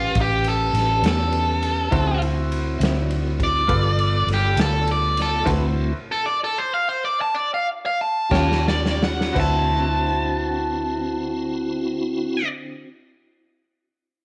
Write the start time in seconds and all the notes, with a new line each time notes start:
Already playing: A1 C#4 F4 G4 B4
0.15 A1, kick, ride
0.21 G4
0.44 A4, ride
0.73 A1, snare, ride
1.02 E2 A2 G3 B3 C#4, snare, ride
1.06 A4
1.32 ride
1.63 ride
1.91 D2 D3 F#3 C4 C#4 E4 F4 F#4 G4 C5, kick, ride
2.21 C4 E4 F#4, ride
2.52 ride
2.79 D2 D3 F#3 C4 E4, ride
2.83 snare
3.10 ride
3.40 kick, ride
3.44 D5
3.67 G1 G3 B3 F4 A4 B4, kick, ride
3.99 ride
4.27 G1, ride
4.31 G4, snare
4.56 D2 G3 B3 F4 A4, snare, ride
4.61 A4
4.87 ride
4.92 D5
5.17 snare, ride
5.22 A4
5.43 D2 D3 A3 C4 E4 F#4 B4 C5, kick, crash, ride
5.47 F#4 B4
6.12 A4
6.26 D5
6.44 A4
6.58 C5
6.74 F5
6.89 C5
7.05 D5
7.21 A5
7.35 D5
7.54 F5
7.86 F5
8.01 A5
8.29 D#2 D#3 G3 C#4 F4 G4 C#5 G5 A5, kick
8.33 snare
8.52 snare
8.68 D5, snare
8.86 snare
9.03 F#5, snare
9.21 snare
9.33 D2 D3 C4 E4 F#4 B4 C5, kick, crash
9.37 F#4 E5 A5